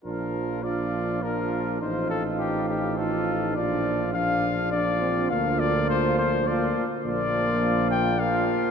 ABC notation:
X:1
M:3/4
L:1/8
Q:1/4=103
K:Bb
V:1 name="Cornet"
B2 d2 B2 | c A G G A2 | d2 f2 d2 | f d c c d z |
d3 g f2 |]
V:2 name="Trumpet"
F2 F2 F2 | F4 F2 | F2 F2 F2 | F4 F z |
F4 F2 |]
V:3 name="French horn"
D2 D2 D2 | E4 E2 | D2 D2 D C | B,4 B, z |
B,4 B,2 |]
V:4 name="Trombone" clef=bass
F,2 F,2 F,2 | F,4 F,2 | F,2 F,2 F,2 | F,4 F, z |
F,4 F,2 |]
V:5 name="Tuba" clef=bass
B,,,6 | A,,,6 | B,,,6 | D,,4- D,, z |
B,,,6 |]